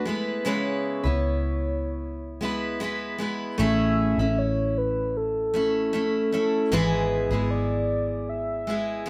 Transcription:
0.00 0.49 B4 medium
0.05 1.01 C#2 medium
0.05 0.44 G#3 medium
0.05 0.45 B3 medium
0.05 0.46 E4 medium
0.05 0.46 B4 medium
0.45 1.04 C#3 medium
0.45 1.05 G#3 medium
0.45 1.05 B3 medium
0.45 1.04 E4 medium
0.45 1.02 B4 medium
0.45 2.82 C#5 medium
1.03 3.55 C#2 medium
1.03 2.41 B3 soft
1.03 2.43 E4 soft
1.03 2.41 B4 soft
2.41 2.79 G#3 medium
2.41 2.80 B3 medium
2.41 2.81 E4 medium
2.41 2.82 B4 medium
2.80 3.17 G#3 medium
2.80 3.18 B3 medium
2.80 3.20 E4 medium
2.80 3.21 B4 medium
3.18 3.57 G#3 medium
3.18 3.59 B3 medium
3.18 3.58 E4 medium
3.18 3.60 B4 medium
3.58 4.14 A1 loud
3.58 4.17 A3 medium
3.58 4.18 C#4 medium
3.58 4.18 E4 medium
3.58 4.18 G#4 medium
3.58 4.40 E5 loud
4.18 6.68 A1 loud
4.18 5.54 C#4 soft
4.18 5.56 E4 soft
4.38 4.79 C#5 loud
4.78 5.18 B4 medium
5.17 6.33 A4 medium
5.54 5.92 A3 medium
5.54 5.93 C#4 medium
5.54 5.94 E4 medium
5.93 6.31 A3 medium
5.93 6.32 C#4 medium
5.93 6.34 E4 medium
6.32 6.72 A3 medium
6.32 6.72 C#4 medium
6.32 6.72 E4 medium
6.32 6.75 A4 medium
6.72 7.27 G#1 medium
6.72 7.31 G#2 medium
6.72 7.31 E3 medium
6.72 7.31 G#3 medium
6.72 7.31 B3 medium
6.72 7.31 E4 medium
6.72 7.29 G#4 loud
6.72 7.52 B4 loud
7.31 9.10 G#1 medium
7.31 8.66 G#3 soft
7.31 8.68 B3 soft
7.31 8.68 E4 soft
7.31 8.68 G#4 medium
7.50 8.31 D5 loud
8.29 9.10 E5 medium
8.67 9.04 G#3 medium
8.67 9.06 B3 medium
8.67 9.07 E4 medium
8.67 9.08 G#4 medium
9.06 9.10 G#3 medium

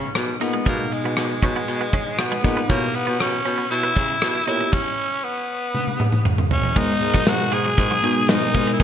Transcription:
0.00 0.66 B2 medium
0.00 0.40 B3 medium
0.00 0.11 C#4 medium
0.00 0.41 D#4 medium
0.00 0.41 G#4 medium
0.00 0.42 D#5 medium
0.15 0.34 B2 medium
0.15 muted clean electric guitar stroke soft
0.15 cross-stick loud
0.15 closed hi-hat medium
0.40 0.59 A#2 medium
0.40 0.56 B3 medium
0.40 0.65 B3 medium
0.40 0.56 D#4 medium
0.40 0.51 D#4 medium
0.40 0.57 G#4 medium
0.40 0.57 D#5 medium
0.40 closed hi-hat medium
0.53 0.63 G#3 medium
0.66 0.85 B2 medium
0.66 1.39 B2 medium
0.66 0.76 G#3 medium
0.66 0.94 A#3 medium
0.66 1.29 B3 medium
0.66 1.29 D#4 medium
0.66 1.29 G#4 medium
0.66 1.29 D#5 medium
0.66 kick loud
0.66 closed hi-hat medium
0.91 1.18 G#3 medium
0.91 muted clean electric guitar stroke soft
0.91 closed hi-hat medium
1.03 1.13 B2 medium
1.03 1.15 B3 medium
1.16 1.35 B2 medium
1.16 2.21 G#3 medium
1.16 muted clean electric guitar stroke soft
1.16 cross-stick medium
1.16 closed hi-hat medium
1.42 1.61 B2 medium
1.42 1.53 C#4 medium
1.42 kick medium
1.42 closed hi-hat medium
1.56 1.65 B3 medium
1.68 1.86 B2 medium
1.68 muted clean electric guitar stroke soft
1.68 closed hi-hat medium
1.81 1.90 B3 medium
1.93 2.03 C#4 medium
1.93 kick medium
1.93 closed hi-hat medium
2.18 2.37 B2 medium
2.18 2.71 B3 medium
2.18 cross-stick loud
2.18 closed hi-hat medium
2.32 2.41 G#3 medium
2.43 2.63 A#2 medium
2.43 2.59 B3 medium
2.43 2.60 D#4 medium
2.43 2.60 G#4 medium
2.43 2.60 D#5 medium
2.43 muted clean electric guitar stroke soft
2.43 kick medium
2.43 closed hi-hat medium
2.57 2.66 B3 medium
2.68 3.42 B2 medium
2.68 2.88 B2 medium
2.68 2.96 A#3 medium
2.68 3.31 B3 medium
2.68 2.79 C#4 medium
2.68 3.32 E4 medium
2.68 3.32 G4 medium
2.68 3.32 C#5 medium
2.68 kick medium
2.68 closed hi-hat medium
2.95 3.22 B3 medium
2.95 muted clean electric guitar stroke soft
2.95 closed hi-hat medium
3.07 3.17 B2 medium
3.07 3.17 B3 medium
3.20 3.39 B2 medium
3.20 3.70 C#4 medium
3.20 muted clean electric guitar stroke soft
3.20 cross-stick medium
3.20 closed hi-hat medium
3.45 3.64 B2 medium
3.45 3.55 C#4 medium
3.45 closed hi-hat medium
3.58 3.68 B3 medium
3.70 3.90 B2 loud
3.70 4.44 E4 loud
3.70 muted clean electric guitar stroke soft
3.70 closed hi-hat medium
3.83 3.93 B3 medium
3.96 4.15 C#3 medium
3.96 4.06 C#4 medium
3.96 kick medium
3.96 closed hi-hat medium
4.22 4.41 B2 loud
4.22 muted clean electric guitar stroke soft
4.22 cross-stick loud
4.22 closed hi-hat medium
4.47 4.66 A#2 medium
4.47 4.63 B3 medium
4.47 4.57 D#4 medium
4.47 4.63 E4 medium
4.47 4.74 E4 medium
4.47 4.63 G4 medium
4.47 4.63 C#5 medium
4.47 closed hi-hat medium
4.61 4.70 C#4 medium
4.72 5.26 C#4 loud
4.72 kick medium
4.72 crash medium
5.24 6.26 B3 medium
5.75 high tom medium
5.87 high tom soft
6.00 mid tom medium
6.12 mid tom medium
6.25 mid tom medium
6.38 mid tom medium
6.51 6.79 C#4 medium
6.51 floor tom medium
6.63 floor tom medium
6.76 6.95 G#2 medium
6.76 7.49 G#2 medium
6.76 8.83 B2 medium
6.76 7.38 G#3 medium
6.76 6.86 G#3 medium
6.76 7.39 B3 medium
6.76 7.39 D#4 medium
6.76 7.30 D#4 loud
6.76 8.83 G#4 medium
6.76 8.83 A#4 medium
6.76 7.39 A#4 medium
6.76 kick loud
6.76 crash medium
7.02 7.20 G#2 medium
7.02 muted clean electric guitar stroke soft
7.02 closed hi-hat medium
7.14 7.23 F#3 medium
7.14 kick medium
7.26 7.45 G#2 medium
7.26 7.55 F#4 medium
7.26 muted clean electric guitar stroke soft
7.26 snare loud
7.26 closed hi-hat medium
7.52 7.71 G#2 medium
7.52 7.62 G#3 medium
7.52 8.31 G#4 loud
7.52 closed hi-hat medium
7.65 7.75 F#3 medium
7.78 7.96 G#2 medium
7.78 muted clean electric guitar stroke soft
7.78 kick medium
7.78 closed hi-hat medium
7.91 8.00 F#3 medium
8.03 8.22 B2 medium
8.03 8.34 G#3 medium
8.03 8.13 G#3 medium
8.03 8.35 B3 medium
8.03 8.35 D#4 medium
8.03 8.35 A#4 medium
8.03 closed hi-hat medium
8.29 8.47 G#2 medium
8.29 8.72 D#4 medium
8.29 muted clean electric guitar stroke soft
8.29 snare loud
8.29 closed hi-hat medium
8.54 8.73 G#2 medium
8.54 8.70 G#3 medium
8.54 8.64 A#3 medium
8.54 8.70 B3 medium
8.54 8.70 D#4 medium
8.54 8.71 A#4 medium
8.54 kick medium
8.54 open hi-hat medium
8.67 8.77 G#3 medium
8.73 8.81 E4 medium
8.79 8.83 G#2 loud
8.79 8.83 G#2 medium
8.79 8.83 G#3 medium
8.79 8.83 B3 medium
8.79 8.83 D#4 loud
8.79 8.83 D#4 medium
8.79 kick loud
8.79 closed hi-hat medium

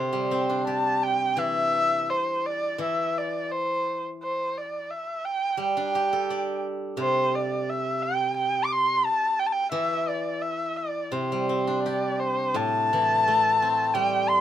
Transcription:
0.00 2.09 C3 soft
0.00 0.64 D3 medium
0.00 0.65 C5 medium
0.13 1.56 G3 soft
0.31 1.74 C4 soft
0.49 1.92 D4 soft
0.67 2.09 G4 soft
0.67 1.05 A5 medium
1.03 1.41 G5 medium
1.37 2.77 E3 soft
1.37 2.11 E5 loud
2.10 2.48 C5 medium
2.46 2.80 D5 medium
2.78 4.90 E3 soft
2.83 3.19 E5 medium
3.18 3.53 D5 medium
3.52 4.03 C5 medium
4.23 4.59 C5 medium
4.58 4.92 D5 medium
4.91 5.27 E5 medium
5.25 5.60 G5 medium
5.57 7.66 G3 soft
5.62 6.61 G5 medium
5.77 7.15 D4 soft
5.95 7.33 G4 soft
6.13 7.50 A4 soft
6.30 7.68 D5 soft
6.97 9.05 C3 medium
7.01 7.37 C5 medium
7.35 7.71 D5 medium
7.70 8.04 E5 medium
8.02 8.36 G5 medium
8.37 8.66 G5 medium
8.65 8.74 D6 medium
8.72 9.07 C6 medium
9.06 9.41 A5 medium
9.40 9.48 G5 medium
9.47 9.54 A5 medium
9.52 9.71 G5 medium
9.72 11.83 E3 medium
9.72 10.10 E5 medium
10.08 10.43 D5 medium
10.42 10.78 E5 medium
10.77 11.14 D5 medium
11.12 13.25 C3 soft
11.12 11.82 C5 medium
11.32 12.74 G3 soft
11.49 12.91 C4 soft
11.67 13.09 D4 soft
11.83 13.26 G4 soft
11.83 12.21 D5 medium
12.19 12.58 C5 medium
12.54 14.41 A2 soft
12.54 13.96 A5 loud
12.93 14.32 E3 soft
13.28 14.41 A3 soft
13.62 14.41 C4 soft
13.94 14.41 G3 medium
13.94 14.31 G5 medium
14.29 14.41 C6 loud

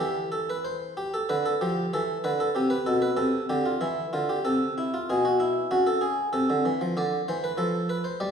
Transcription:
0.00 0.93 E3 medium
0.00 0.28 G4 medium
0.32 0.49 A4 medium
0.50 0.66 B4 medium
0.65 0.97 C5 medium
0.97 1.14 G4 medium
1.14 1.30 A4 medium
1.29 1.52 D3 medium
1.29 1.45 B4 medium
1.45 1.61 A4 medium
1.61 1.84 F3 medium
1.61 1.93 G4 medium
1.93 2.16 E3 medium
1.93 2.25 A4 medium
2.24 2.47 D3 medium
2.24 2.40 B4 medium
2.40 2.56 A4 medium
2.55 2.78 C3 medium
2.55 2.71 G4 medium
2.70 2.87 B4 medium
2.86 3.10 B2 medium
2.86 3.03 A4 medium
3.02 3.18 B4 medium
3.17 3.40 C3 medium
3.17 3.44 A4 medium
3.49 3.73 D3 medium
3.49 3.66 G4 medium
3.65 3.82 F4 medium
3.81 4.04 E3 medium
3.81 4.09 E4 medium
4.13 4.37 D3 medium
4.13 4.30 F4 medium
4.29 4.46 G4 medium
4.45 4.90 C3 medium
4.45 4.72 A4 medium
4.78 4.93 E4 medium
4.94 5.09 F4 medium
5.10 5.54 B2 medium
5.10 5.25 G#4 medium
5.25 5.40 F#4 medium
5.40 5.66 E4 medium
5.71 6.15 C#3 medium
5.71 5.86 F#4 medium
5.87 6.02 A4 medium
6.01 6.28 G#4 medium
6.33 6.48 C3 medium
6.33 6.64 A4 medium
6.50 6.64 D3 medium
6.65 6.80 E3 medium
6.81 6.96 F3 medium
6.97 7.19 D3 medium
6.97 7.28 D5 medium
7.28 7.50 E3 medium
7.28 7.43 C5 medium
7.44 7.59 B4 medium
7.57 8.02 F3 medium
7.57 7.89 A4 medium
7.89 8.05 B4 medium
8.04 8.20 C5 medium
8.20 8.31 G3 medium
8.20 8.31 D5 medium

